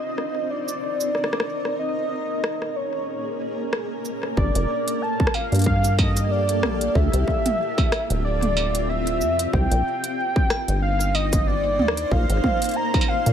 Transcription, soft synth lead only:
Already playing: D#5
0.50 D5
1.15 D5
1.79 D#5
2.76 C#5
4.37 D5
5.02 A5
5.34 F5
5.66 F5
5.99 D#5
6.31 D5
6.96 E5
8.24 D5
8.89 E5
9.53 G5
10.82 F5
11.15 D#5
11.47 D5
12.11 F5
12.76 A#5
13.08 F5

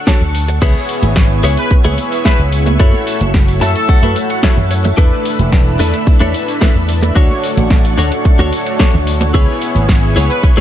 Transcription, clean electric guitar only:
0.07 D4 F#4 A4 C#5 A5
0.34 muted clean electric guitar stroke
0.48 muted clean electric guitar stroke
0.62 E4 G#4 B4 C#5
1.44 E4 G#4 B4 C#5
1.71 muted clean electric guitar stroke
1.85 E4 G#4 B4 C#5
2.12 muted clean electric guitar stroke
2.25 E4 G#4 B4 E5
2.53 muted clean electric guitar stroke
2.66 muted clean electric guitar stroke
2.80 E4 F#4 A4 C#5
3.61 E4 F#4 A4 E5 A5
3.89 F#5, muted clean electric guitar stroke
4.03 E4 F#4 A4 B4
4.30 F#5, muted clean electric guitar stroke
4.43 E4 F#4 A4 C#5 E5
4.70 C#5, muted clean electric guitar stroke
4.84 muted clean electric guitar stroke
4.97 D4 E4 A4 B4
5.79 D4 E4 A4 B4
6.07 muted clean electric guitar stroke
6.20 D4 E4 A4 C#5
6.48 muted clean electric guitar stroke
6.61 D4 E4 A4 B4
6.88 muted clean electric guitar stroke
7.03 muted clean electric guitar stroke
7.15 D4 F#4 A4 C#5
7.98 D4 F#4 A4 C#5
8.25 muted clean electric guitar stroke
8.39 D4 F#4 A4 C#5
8.66 muted clean electric guitar stroke
8.79 D4 F#4 A4 C#5
9.07 muted clean electric guitar stroke
9.21 muted clean electric guitar stroke
9.34 E4 G#4 B4 C#5
10.16 E4 G#4 B4 C#5
10.43 muted clean electric guitar stroke
10.57 E4 G#4

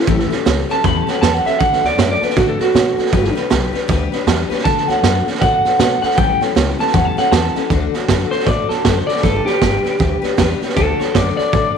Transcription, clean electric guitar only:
Already playing: E4
0.71 A5
0.85 B5
0.97 A5
1.09 F#5
1.21 A5
1.35 F#5
1.46 E5
1.59 F#5
1.86 D5
1.99 E5
2.11 D5
2.23 B4
2.37 F#4
2.49 A4
2.61 F#4
4.64 A5
4.88 F#5
5.41 F#5
5.80 F#5
6.02 F#5
6.17 G5
6.80 A5
6.94 F#5
7.05 A5
7.18 F#5
7.31 A5
8.31 C5
8.46 D5
8.69 A4
8.85 C5
9.07 D5
9.23 A4
9.46 G4
10.76 A4
10.99 C5
11.14 D5
11.37 D5

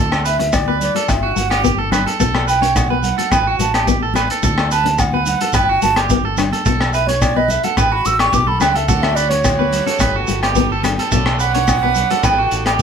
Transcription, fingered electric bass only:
Already playing: D2
1.09 G1
1.36 G1
2.20 B1
3.31 A1
3.59 A1
4.43 D2
5.54 G1
5.83 G1
6.66 B1
7.77 A1
8.06 A1
8.33 B1
8.62 C#2
8.89 D2
10.00 G1
10.29 G1
11.12 B1
12.23 A1
12.52 A1

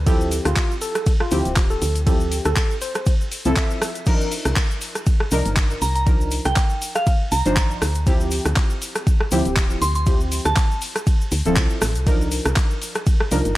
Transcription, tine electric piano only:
0.06 A4
0.45 F4
0.82 A4
1.20 F4
1.70 A4
2.07 A4
2.45 A4
2.82 C5
3.57 E5

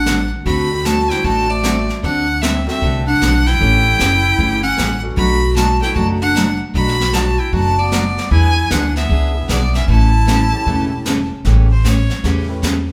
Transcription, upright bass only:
Already playing: A1
0.46 D2
1.25 A1
2.04 D2
2.83 C2
3.22 B1
3.61 A1
3.99 F#1
4.39 G1
4.79 A1
5.17 B1
5.96 F#1
6.75 B1
7.53 F#1
8.31 E2
8.71 D2
9.10 C#2
9.49 B1
9.88 A1
10.67 E1
11.45 A1
12.24 E2

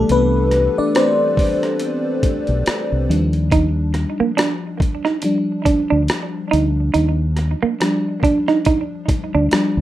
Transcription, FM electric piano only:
Already playing: E3 G3 A3 B3 D4 G4 A4 B4
0.12 B3 B4
0.78 D4 D5
0.96 C4 C5
3.09 F3 G3 D4
5.24 F3 G3 D4
7.81 F3 G3 D4
9.52 F3 G3 D4

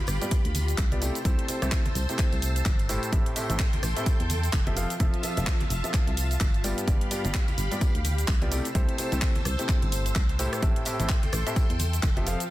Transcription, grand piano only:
0.22 G2 B3 F4 G4 D5
0.92 B3 F4 G4 D5
1.02 C3 A3 E4 G4 D5
1.25 C3 A3 E4 G4 C5
1.49 C3 A3 E4 G4 C5
1.62 C3 A3 E4 G4 C5
2.09 C3 A3 E4 G4 C5
2.89 A2 A3 E4 G4 C5
3.13 A2 C4 G4 A4 E5
3.36 A2 C4 G4 A4 E5
3.50 A2 C4 G4 A4 E5
3.97 A2 C4 G4 A4 E5
4.67 F3 C4 G4 A4 E5
4.77 F3 C4 F4 A4 F5
5.00 F3 C4 F4 A4 E5
5.23 F3 C4 F4 A4 E5
5.37 F3 C4 F4 A4 E5
5.84 F3 C4 F4 A4 E5
6.64 G2 B3 F4 G4 D5
6.87 G2 B3 F4 G4 D5
7.11 G2 B3 F4 G4 D5
7.25 G2 B3 F4 G4 D5
7.71 G2 B3 F4 G4 D5
8.42 B3 F4 G4 D5
8.52 C3 A3 E4 G4 D5
8.75 C3 A3 E4 G4 C5
8.98 C3 A3 E4 G4 C5
9.12 C3 A3 E4 G4 C5
9.59 C3 A3 E4 G4 C5
10.39 A2 A3 E4 G4 C5
10.63 A2 C4 G4 A4 E5
10.86 A2 C4 G4 A4 E5
11.00 A2 C4 G4 A4 E5
11.46 A2 C4 G4 A4 E5
12.17 F3 C4 G4 A4 E5
12.27 F3 C4 F4 A4 F5

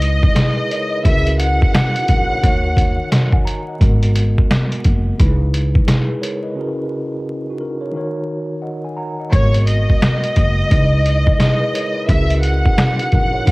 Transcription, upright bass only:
Already playing: C#2
1.05 C#2
2.09 A#1
2.44 D#2
3.81 G#1
4.85 F#1
5.20 C#2
9.33 G#1
10.37 F#1
10.72 C#2
12.09 C#2
13.13 A#1
13.47 D#2

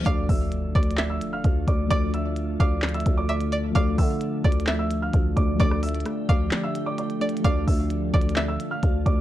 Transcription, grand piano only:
0.06 D5 D6
0.29 E5 E6
0.75 D5 D6
1.10 E5 E6
1.33 F5 F6
1.68 D5 D6
1.91 D5 D6
2.14 E5 E6
2.60 D5 D6
2.94 E5 E6
3.17 D5 D6
3.29 D5 D6
3.75 D5 D6
3.98 E5 E6
4.44 D5 D6
4.79 E5 E6
5.02 F5 F6
5.36 D5 D6
5.60 D5 D6
5.83 E5 E6
6.29 D5 D6
6.64 E5 E6
6.86 D5 D6
6.98 D5 D6
7.45 D5 D6
7.67 E5 E6
8.14 D5 D6
8.48 E5 E6
8.71 F5 F6
9.06 D5 D6

